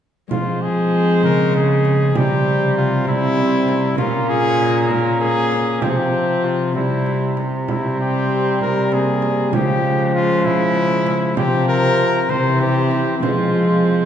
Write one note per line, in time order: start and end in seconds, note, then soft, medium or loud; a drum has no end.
0.28 1.25 F3 medium
0.28 2.18 F3 medium
0.28 2.16 G#3 medium
0.28 2.17 G#3 medium
0.28 2.11 C4 soft
0.28 2.11 C4 medium
0.28 0.64 F4 medium
0.28 frame drum medium
0.62 1.23 G#4 medium
1.23 2.14 C#3 medium
1.23 2.18 C#3 medium
1.23 1.54 A#4 loud
1.23 frame drum soft
1.54 2.18 G#4 medium
1.54 frame drum soft
1.85 frame drum soft
2.12 4.01 C3 medium
2.12 3.95 C3 medium
2.12 3.07 G3 medium
2.12 3.03 C4 medium
2.12 3.05 C4 medium
2.12 frame drum medium
2.16 2.77 G4 loud
2.77 3.07 F4 medium
3.04 3.97 G3 medium
3.04 4.00 C4 medium
3.04 3.97 C4 medium
3.04 3.97 E4 loud
3.04 frame drum soft
3.37 frame drum soft
3.68 frame drum medium
3.95 5.79 A#2 medium
3.95 5.85 A#2 medium
3.95 5.84 A#3 medium
3.95 5.84 C#4 medium
3.95 4.87 C#4 medium
3.95 5.79 F4 medium
3.95 4.28 F4 loud
3.95 frame drum medium
3.99 4.87 A#3 medium
4.29 4.92 G#4 loud
4.91 5.85 A#3 medium
4.91 5.84 C#4 medium
4.91 5.20 A#4 medium
4.91 frame drum soft
5.20 5.83 G#4 loud
5.20 frame drum soft
5.52 frame drum soft
5.80 9.53 C3 medium
5.80 9.55 C3 medium
5.80 6.77 F3 medium
5.80 6.71 C4 medium
5.80 6.76 C4 medium
5.80 6.77 F4 medium
5.80 5.91 G4 medium
5.80 frame drum medium
5.89 5.99 G#4 medium
5.97 6.46 G4 medium
6.44 6.75 F4 medium
6.72 7.38 G3 medium
6.72 9.54 C4 soft
6.72 9.55 E4 medium
6.72 7.39 E4 medium
6.72 frame drum soft
6.76 7.47 C4 medium
7.06 frame drum soft
7.37 frame drum soft
7.68 9.56 G3 medium
7.68 8.94 C4 medium
7.68 7.98 E4 medium
7.68 frame drum medium
8.01 8.61 G4 loud
8.61 8.95 A#4 loud
8.61 frame drum soft
8.92 9.53 A#3 medium
8.92 9.53 G#4 medium
8.92 frame drum soft
9.22 frame drum medium
9.51 11.36 C#3 medium
9.51 11.40 C#3 medium
9.51 12.31 F3 medium
9.51 11.36 F3 medium
9.51 11.33 G#3 medium
9.51 10.14 G4 medium
9.51 frame drum medium
10.15 10.46 F4 loud
10.45 11.37 E4 loud
10.45 frame drum medium
10.75 frame drum soft
11.07 frame drum medium
11.34 12.28 C3 medium
11.34 12.25 C3 medium
11.34 12.25 F3 medium
11.34 12.26 C4 medium
11.34 12.25 C4 medium
11.34 12.31 F4 medium
11.34 11.67 G4 loud
11.34 frame drum medium
11.68 12.31 A#4 loud
12.27 13.25 C3 medium
12.27 13.21 C3 medium
12.27 13.25 E3 medium
12.27 13.20 C4 medium
12.27 13.21 C4 medium
12.27 13.25 E4 medium
12.27 12.62 C5 loud
12.27 frame drum soft
12.61 13.23 G4 loud
12.61 frame drum soft
12.91 frame drum soft
13.20 14.05 F3 medium
13.20 14.05 G#3 medium
13.20 14.05 C4 medium
13.20 14.05 F4 medium
13.20 frame drum medium
13.24 14.05 F3 medium